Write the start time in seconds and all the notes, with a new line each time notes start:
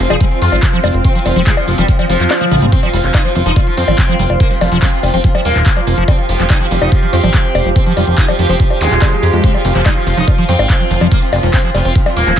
Already playing: F3 C4 F4 C5 F5
0.10 F1 F3 G#4, closed hi-hat, high bongo
0.21 F3 G3, kick, closed hi-hat
0.31 F3, closed hi-hat
0.42 F2 F4, open hi-hat
0.52 G#1 F3, closed hi-hat, high bongo
0.63 F3, kick, clap, closed hi-hat
0.73 F3, closed hi-hat
0.84 F1 G3, open hi-hat, high bongo
0.94 F1, closed hi-hat
1.05 C4, kick, closed hi-hat
1.15 F3, closed hi-hat
1.26 F1 F3, open hi-hat, high bongo
1.36 F1 F3, closed hi-hat
1.47 G3 G#3, kick, clap, closed hi-hat
1.57 F3, closed hi-hat, high bongo
1.68 F1 F3, open hi-hat
1.78 F1 F3 G3, closed hi-hat
1.88 F3, kick, closed hi-hat, swell
1.99 F3, closed hi-hat, high bongo
2.09 F1 F3 G3, open hi-hat
2.20 F1 F3, clap, closed hi-hat
2.31 snare, clap, closed hi-hat, high bongo
2.41 F3, closed hi-hat, high tom
2.51 A#1 G3, open hi-hat, mid tom
2.62 A#1 G3, closed hi-hat, mid tom
2.72 F3 C4 F4, kick, closed hi-hat
2.83 F3, closed hi-hat, high bongo
2.93 F1 F3 G3, open hi-hat
3.04 F1 F3, clap, closed hi-hat
3.14 D#4, kick, clap, closed hi-hat, high bongo
3.25 F3
3.35 F1 F3, open hi-hat
3.46 F1 F3 D#4, closed hi-hat
3.56 F3 G3, kick, closed hi-hat, high bongo
3.67 F3, closed hi-hat
3.77 F2 C4, open hi-hat
3.88 G#1 F3, closed hi-hat, high bongo
3.98 F3, kick, clap, closed hi-hat
4.09 F3, closed hi-hat
4.19 F1 G3, open hi-hat
4.30 F1, closed hi-hat, high bongo
4.40 A#3, kick, closed hi-hat
4.51 C3 F3, closed hi-hat
4.61 F1 C3 F3, open hi-hat, high bongo
4.72 F1 C3 F3, closed hi-hat
4.82 G3 C4, kick, clap, closed hi-hat
4.93 C3
5.03 F1 C3, open hi-hat, high bongo
5.14 F1 F3 C4, closed hi-hat
5.24 C3 F3, kick, closed hi-hat
5.35 C3 F3, closed hi-hat, high bongo
5.45 D#1 G3 A#3, open hi-hat
5.56 D#1, clap
5.66 kick, clap, closed hi-hat
5.77 F3, closed hi-hat, high bongo
5.87 F1 F3, open hi-hat
5.98 F1 F3, closed hi-hat
6.08 G3 C4 G4, kick, closed hi-hat, high bongo
6.19 F3, closed hi-hat
6.29 F1 F3, open hi-hat
6.40 F1 F3, clap, closed hi-hat
6.50 F3 D#4, kick, clap, closed hi-hat, high bongo
6.61 F3
6.71 F1 F3 G3, open hi-hat
6.82 F1 D#4, closed hi-hat, high bongo
6.92 F3, kick, closed hi-hat
7.03 F3, closed hi-hat
7.13 F2 F3 C4, open hi-hat
7.24 G#1 F3, closed hi-hat, high bongo
7.34 G3, kick, clap, closed hi-hat
7.44 closed hi-hat
7.55 F1, open hi-hat, high bongo
7.65 F1 F3, closed hi-hat
7.76 F3 C4, kick, closed hi-hat
7.86 F3, closed hi-hat
7.97 F1 F3 G3, open hi-hat, high bongo
8.07 F1 F3, closed hi-hat
8.18 D#4, kick, clap, closed hi-hat
8.28 F3, closed hi-hat, high bongo
8.39 F1 F3, open hi-hat
8.49 F1 F3 C4, closed hi-hat
8.60 F3 G3, kick, closed hi-hat
8.70 F3, closed hi-hat, high bongo
8.81 D#1 G#3, open hi-hat, zap
8.91 D#1 F4, clap, closed hi-hat
9.02 G#3, kick, clap, closed hi-hat, high bongo
9.12 F3, closed hi-hat
9.23 F2 G4, open hi-hat
9.33 F2 G#3, closed hi-hat
9.44 C4 F4, kick, closed hi-hat
9.54 F3, closed hi-hat, high bongo
9.65 F1 F3, open hi-hat
9.75 F1 F3, clap, closed hi-hat
9.86 G3 D#4, kick, clap, closed hi-hat, high bongo
9.96 F3
10.07 F1 F3, open hi-hat
10.17 F1 F3 D#4, closed hi-hat
10.28 F3, kick, closed hi-hat, high bongo
10.38 F3, closed hi-hat
10.49 F2 G3 C4, open hi-hat
10.59 G#1, high bongo
10.70 kick, clap, closed hi-hat
10.80 F3, closed hi-hat
10.91 F1 F3, open hi-hat
11.01 F1 F3, closed hi-hat, high bongo
11.12 G3 A#3, kick, closed hi-hat
11.22 C3, closed hi-hat
11.33 F1 C3, open hi-hat, high bongo
11.43 F1 C3 F3, closed hi-hat
11.54 F3 C4, kick, clap, closed hi-hat
11.64 C3 F3
11.75 F1 C3 G3, open hi-hat, high bongo
11.85 F1 C4, closed hi-hat
11.96 C3, kick, closed hi-hat
12.06 C3 F3, closed hi-hat, high bongo
12.17 D#1 F3 A#3, open hi-hat
12.27 D#1 F3, clap, closed hi-hat